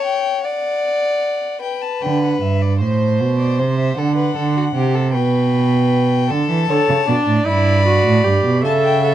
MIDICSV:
0, 0, Header, 1, 5, 480
1, 0, Start_track
1, 0, Key_signature, 1, "major"
1, 0, Tempo, 781250
1, 1001, Time_signature, 6, 3, 24, 8
1, 5619, End_track
2, 0, Start_track
2, 0, Title_t, "Violin"
2, 0, Program_c, 0, 40
2, 27, Note_on_c, 0, 79, 76
2, 267, Note_off_c, 0, 79, 0
2, 273, Note_on_c, 0, 78, 78
2, 986, Note_off_c, 0, 78, 0
2, 996, Note_on_c, 0, 79, 70
2, 1118, Note_on_c, 0, 81, 62
2, 1127, Note_off_c, 0, 79, 0
2, 1243, Note_on_c, 0, 79, 59
2, 1252, Note_off_c, 0, 81, 0
2, 1363, Note_off_c, 0, 79, 0
2, 1366, Note_on_c, 0, 78, 54
2, 1484, Note_off_c, 0, 78, 0
2, 1490, Note_on_c, 0, 76, 56
2, 1606, Note_on_c, 0, 74, 54
2, 1615, Note_off_c, 0, 76, 0
2, 1722, Note_off_c, 0, 74, 0
2, 1726, Note_on_c, 0, 72, 58
2, 2078, Note_off_c, 0, 72, 0
2, 2081, Note_on_c, 0, 74, 55
2, 2202, Note_on_c, 0, 72, 54
2, 2211, Note_off_c, 0, 74, 0
2, 2320, Note_off_c, 0, 72, 0
2, 2324, Note_on_c, 0, 76, 63
2, 2440, Note_off_c, 0, 76, 0
2, 2443, Note_on_c, 0, 78, 71
2, 3144, Note_off_c, 0, 78, 0
2, 3154, Note_on_c, 0, 79, 70
2, 3872, Note_on_c, 0, 81, 86
2, 3881, Note_off_c, 0, 79, 0
2, 4586, Note_off_c, 0, 81, 0
2, 4592, Note_on_c, 0, 83, 79
2, 5299, Note_off_c, 0, 83, 0
2, 5312, Note_on_c, 0, 81, 81
2, 5360, Note_off_c, 0, 81, 0
2, 5433, Note_on_c, 0, 79, 75
2, 5551, Note_off_c, 0, 79, 0
2, 5555, Note_on_c, 0, 78, 68
2, 5603, Note_off_c, 0, 78, 0
2, 5619, End_track
3, 0, Start_track
3, 0, Title_t, "Violin"
3, 0, Program_c, 1, 40
3, 0, Note_on_c, 1, 73, 77
3, 273, Note_on_c, 1, 74, 73
3, 282, Note_off_c, 1, 73, 0
3, 996, Note_off_c, 1, 74, 0
3, 1000, Note_on_c, 1, 71, 65
3, 1701, Note_off_c, 1, 71, 0
3, 1724, Note_on_c, 1, 72, 64
3, 2445, Note_on_c, 1, 69, 64
3, 2454, Note_off_c, 1, 72, 0
3, 2553, Note_off_c, 1, 69, 0
3, 2557, Note_on_c, 1, 71, 62
3, 2676, Note_off_c, 1, 71, 0
3, 2679, Note_on_c, 1, 69, 57
3, 2797, Note_off_c, 1, 69, 0
3, 2808, Note_on_c, 1, 66, 59
3, 2854, Note_off_c, 1, 66, 0
3, 2919, Note_on_c, 1, 67, 62
3, 3038, Note_on_c, 1, 69, 61
3, 3048, Note_off_c, 1, 67, 0
3, 3151, Note_off_c, 1, 69, 0
3, 3155, Note_on_c, 1, 71, 71
3, 3854, Note_off_c, 1, 71, 0
3, 3871, Note_on_c, 1, 69, 68
3, 4115, Note_on_c, 1, 73, 64
3, 4124, Note_off_c, 1, 69, 0
3, 4349, Note_on_c, 1, 74, 76
3, 4358, Note_off_c, 1, 73, 0
3, 5303, Note_off_c, 1, 74, 0
3, 5306, Note_on_c, 1, 76, 81
3, 5619, Note_off_c, 1, 76, 0
3, 5619, End_track
4, 0, Start_track
4, 0, Title_t, "Viola"
4, 0, Program_c, 2, 41
4, 4109, Note_on_c, 2, 69, 80
4, 4330, Note_off_c, 2, 69, 0
4, 4348, Note_on_c, 2, 62, 89
4, 4585, Note_on_c, 2, 64, 88
4, 4594, Note_off_c, 2, 62, 0
4, 4823, Note_off_c, 2, 64, 0
4, 4827, Note_on_c, 2, 66, 90
4, 5064, Note_on_c, 2, 67, 81
4, 5074, Note_off_c, 2, 66, 0
4, 5300, Note_off_c, 2, 67, 0
4, 5303, Note_on_c, 2, 69, 90
4, 5544, Note_off_c, 2, 69, 0
4, 5547, Note_on_c, 2, 69, 80
4, 5619, Note_off_c, 2, 69, 0
4, 5619, End_track
5, 0, Start_track
5, 0, Title_t, "Cello"
5, 0, Program_c, 3, 42
5, 1244, Note_on_c, 3, 50, 69
5, 1469, Note_off_c, 3, 50, 0
5, 1487, Note_on_c, 3, 43, 66
5, 1729, Note_on_c, 3, 45, 73
5, 1738, Note_off_c, 3, 43, 0
5, 1966, Note_on_c, 3, 47, 71
5, 1976, Note_off_c, 3, 45, 0
5, 2208, Note_on_c, 3, 48, 72
5, 2217, Note_off_c, 3, 47, 0
5, 2439, Note_off_c, 3, 48, 0
5, 2443, Note_on_c, 3, 50, 78
5, 2677, Note_off_c, 3, 50, 0
5, 2686, Note_on_c, 3, 50, 80
5, 2917, Note_off_c, 3, 50, 0
5, 2923, Note_on_c, 3, 48, 73
5, 3164, Note_on_c, 3, 47, 81
5, 3173, Note_off_c, 3, 48, 0
5, 3873, Note_on_c, 3, 50, 74
5, 3882, Note_off_c, 3, 47, 0
5, 3991, Note_off_c, 3, 50, 0
5, 3995, Note_on_c, 3, 52, 66
5, 4105, Note_off_c, 3, 52, 0
5, 4109, Note_on_c, 3, 50, 69
5, 4156, Note_off_c, 3, 50, 0
5, 4232, Note_on_c, 3, 49, 70
5, 4279, Note_off_c, 3, 49, 0
5, 4352, Note_on_c, 3, 47, 67
5, 4399, Note_off_c, 3, 47, 0
5, 4470, Note_on_c, 3, 45, 65
5, 4585, Note_off_c, 3, 45, 0
5, 4592, Note_on_c, 3, 43, 73
5, 4943, Note_off_c, 3, 43, 0
5, 4950, Note_on_c, 3, 45, 71
5, 5065, Note_off_c, 3, 45, 0
5, 5068, Note_on_c, 3, 43, 73
5, 5117, Note_off_c, 3, 43, 0
5, 5189, Note_on_c, 3, 47, 68
5, 5307, Note_on_c, 3, 49, 77
5, 5316, Note_off_c, 3, 47, 0
5, 5619, Note_off_c, 3, 49, 0
5, 5619, End_track
0, 0, End_of_file